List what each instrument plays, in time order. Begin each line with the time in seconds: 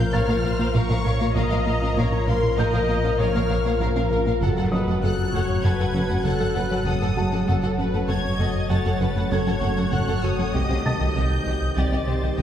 Already playing: sub bass A#1, french horn section F3 A#4, ambient pad F3 F4 A#4 F5, viola section A#4, violin section G6
0.13 double bass section A#1, analog synth bass A#2, cello section A#2, synth arpeggio sound A#3, violin section A#4 F5 F6, viola section C#5, felt piano A#5 A6
0.29 cello section A#2, analog synth bass A#3, synth arpeggio sound F4, violin section A#4 F5
0.44 double bass section A#1, cello section A#2, analog synth bass A#2, violin section A#4 F5, synth arpeggio sound A#4, viola section C5
0.59 cello section A#2, analog synth bass A#3, synth arpeggio sound F4, violin section A#4 F5
0.74 double bass section A#1, analog synth bass A#2, cello section A#2, synth arpeggio sound A#3, violin section A#4 F5 C#6, viola section A#4
0.90 analog synth bass A#2, cello section A#2, synth arpeggio sound C#4, violin section A#4 F5
1.05 double bass section A#1, cello section A#2, analog synth bass A#2, synth arpeggio sound A#4, violin section A#4 F5, viola section C#5
1.20 cello section A#2, analog synth bass A#3, synth arpeggio sound F4, violin section A#4 F5
1.36 sub bass A#1, double bass section A#1, analog synth bass A#2, cello section A#2, french horn section F3 A#4, ambient pad F3 F4 A#4 F5, synth arpeggio sound A#3, violin section A#4 F5 A#5, viola section D#5
1.51 analog synth bass A#2, cello section A#2, violin section A#4 F5, synth arpeggio sound A#4
1.66 double bass section A#1, cello section A#2, analog synth bass A#3, synth arpeggio sound F4, violin section A#4 F5
1.82 analog synth bass A#2, cello section A#2, synth arpeggio sound C#4, violin section A#4 F5
1.97 double bass section A#1, analog synth bass A#2, cello section A#2, synth arpeggio sound A#3, violin section A#4 F5, viola section C#5
2.12 analog synth bass A#2
2.28 double bass section A#1, analog synth bass A#2, cello section A#2, synth arpeggio sound C#4, viola section A#4, violin section A#4 F5 C6
2.43 analog synth bass A#2
2.58 double bass section A#1, analog synth bass A#2, cello section A#2, synth arpeggio sound A#3, violin section A#4 F5 A#5, viola section D#5, felt piano G6
2.73 analog synth bass A#2, cello section A#2, synth arpeggio sound A#4, violin section A#4 F5
2.89 double bass section A#1, cello section A#2, analog synth bass A#3, synth arpeggio sound F4, violin section A#4 F5
3.04 analog synth bass A#2, cello section A#2, synth arpeggio sound C#4, violin section A#4 F5
3.19 double bass section A#1, analog synth bass A#2, cello section A#2, synth arpeggio sound A#3, violin section A#4 F5 F6, viola section C#5
3.35 cello section A#2, analog synth bass A#3, synth arpeggio sound F4, violin section A#4 F5
3.50 double bass section A#1, analog synth bass A#2, cello section A#2, synth arpeggio sound A#4, violin section A#4 F5
3.65 cello section A#2, analog synth bass A#3, synth arpeggio sound F4, violin section A#4 F5
3.80 double bass section A#1, analog synth bass A#2, cello section A#2, synth arpeggio sound A#3, viola section A#4, violin section A#4 F5
3.96 analog synth bass A#2, cello section A#2, synth arpeggio sound C#4, violin section A#4 F5
4.11 double bass section A#1, analog synth bass A#2, cello section A#2, synth arpeggio sound A#4, violin section A#4 F5
4.26 cello section A#2, analog synth bass A#3, synth arpeggio sound F4, violin section A#4 F5
4.41 double bass section F#1, sub bass F#1, analog synth bass F#2, cello section F#2, synth arpeggio sound F#3, ambient pad F#3 F#4 C#5 A5, french horn section F#3 F#4, viola section A4, violin section A4 F#5
4.56 analog synth bass F#2, cello section F#2, synth arpeggio sound F#4, violin section A4 F#5
4.71 double bass section F#1, cello section F#2, analog synth bass F#3, synth arpeggio sound C#4, violin section A4 F#5, viola section B4, felt piano D#5 D#6
4.87 analog synth bass F#2, cello section F#2, synth arpeggio sound A3, violin section A4 F#5
5.02 double bass section F#1, cello section F#2, analog synth bass F#2, synth arpeggio sound F#3, viola section A4, violin section A4 F#5 F#6
5.18 analog synth bass F#2
5.33 double bass section F#1, analog synth bass F#2, cello section F#2, synth arpeggio sound A3, violin section A4 F#5, viola section C#5
5.49 analog synth bass F#2
5.64 double bass section F#1, cello section F#2, analog synth bass F#2, synth arpeggio sound F#3, violin section A4 F#5 G#6, viola section B4
5.79 cello section F#2, analog synth bass F#2, synth arpeggio sound F#4, violin section A4 F#5
5.94 double bass section F#1, cello section F#2, analog synth bass F#3, synth arpeggio sound C#4, violin section A4 F#5
6.09 analog synth bass F#2, cello section F#2, synth arpeggio sound A3, violin section A4 F#5
6.25 double bass section F#1, analog synth bass F#2, cello section F#2, synth arpeggio sound F#3, violin section A4 F#5 F#6, viola section A4
6.40 cello section F#2, analog synth bass F#3, synth arpeggio sound C#4, violin section A4 F#5
6.55 double bass section F#1, analog synth bass F#2, cello section F#2, synth arpeggio sound F#4, violin section A4 F#5, viola section B4
6.71 cello section F#2, analog synth bass F#3, synth arpeggio sound C#4, violin section A4 F#5
6.86 double bass section F#1, analog synth bass F#2, cello section F#2, synth arpeggio sound F#3, violin section A4 F#5 D#6, viola section A4
7.01 cello section F#2, analog synth bass F#2, synth arpeggio sound A3, violin section A4 F#5
7.17 double bass section F#1, cello section F#2, analog synth bass F#2, viola section G#3, synth arpeggio sound F#4, violin section A4 F#5, felt piano A5
7.32 cello section F#2, analog synth bass F#3, synth arpeggio sound C#4, violin section A4 F#5
7.47 double bass section F#1, sub bass F#1, cello section F#2, analog synth bass F#2, synth arpeggio sound F#3, french horn section F#3 A4, ambient pad A3 F#4 A4 C#5, viola section A4, violin section A4 F#5
7.63 cello section F#2, analog synth bass F#2, synth arpeggio sound F#4, violin section A4 F#5
7.78 double bass section F#1, cello section F#2, analog synth bass F#3, synth arpeggio sound C#4, violin section A4 F#5, viola section B4
7.94 analog synth bass F#2, cello section F#2, synth arpeggio sound A3, violin section A4 F#5
8.09 double bass section F#1, analog synth bass F#2, cello section F#2, synth arpeggio sound F#3, violin section A4 F#5 G#6, viola section C#5
8.25 analog synth bass F#2
8.39 double bass section F#1, analog synth bass F#2, cello section F#2, synth arpeggio sound A3, violin section A4 F#5, viola section D#5
8.55 analog synth bass F#2
8.70 double bass section F#1, analog synth bass F#2, cello section F#2, synth arpeggio sound F#3, violin section A4 F#5 A6, viola section C#5
8.85 analog synth bass F#2, cello section F#2, synth arpeggio sound F#4, violin section A4 F#5
9.00 double bass section F#1, cello section F#2, analog synth bass F#3, synth arpeggio sound C#4, violin section A4 F#5, viola section B4
9.16 analog synth bass F#2, cello section F#2, synth arpeggio sound A3, violin section A4 F#5
9.31 double bass section F#1, analog synth bass F#2, cello section F#2, synth arpeggio sound F#3, violin section A4 F#5 G#6, viola section C#5, felt piano G#6
9.47 cello section F#2, analog synth bass F#3, synth arpeggio sound C#4, violin section A4 F#5
9.62 double bass section F#1, analog synth bass F#2, cello section F#2, synth arpeggio sound F#4, violin section A4 F#5
9.77 cello section F#2, analog synth bass F#3, synth arpeggio sound C#4, violin section A4 F#5
9.92 double bass section F#1, analog synth bass F#2, cello section F#2, synth arpeggio sound F#3, violin section A4 F#5 F#6
10.08 cello section F#2, analog synth bass F#2, synth arpeggio sound A3, violin section A4 F#5
10.23 double bass section F#1, analog synth bass F#2, cello section F#2, synth arpeggio sound F#4, violin section A4 F#5 D#6
10.39 cello section F#2, analog synth bass F#3, synth arpeggio sound C#4, violin section A4 F#5
10.54 sub bass C2, analog synth bass C2, double bass section C2, synth arpeggio sound C3, cello section C3, french horn section D#3 G4, ambient pad C4 D#4 G4 C5, violin section G4 D#5, viola section D#5
10.70 analog synth bass C2, cello section C3, synth arpeggio sound C4, violin section G4 D#5
10.85 double bass section C2, cello section C3, analog synth bass C3, synth arpeggio sound G3, violin section G4 D#5, felt piano A5 A6
11.00 analog synth bass C2, cello section C3, synth arpeggio sound D#3, violin section G4 D#5
11.16 analog synth bass C2, double bass section C2, synth arpeggio sound C3, cello section C3, violin section G4 D#5 G6
11.31 analog synth bass C2
11.46 analog synth bass C2, double bass section C2, cello section C3, synth arpeggio sound D#3, violin section G4 D#5
11.62 analog synth bass C2
11.76 double bass section C2, analog synth bass C2, synth arpeggio sound C3, cello section C3, violin section G4 D#5 A6, viola section D5
11.92 analog synth bass C2, cello section C3, synth arpeggio sound C4, violin section G4 D#5
12.07 double bass section C2, cello section C3, analog synth bass C3, synth arpeggio sound G3, violin section G4 D#5, viola section C5
12.22 analog synth bass C2, cello section C3, synth arpeggio sound D#3, violin section G4 D#5
12.38 double bass section C2, analog synth bass C2, cello section C3, synth arpeggio sound C3, violin section G4 D#5 G6, viola section D#5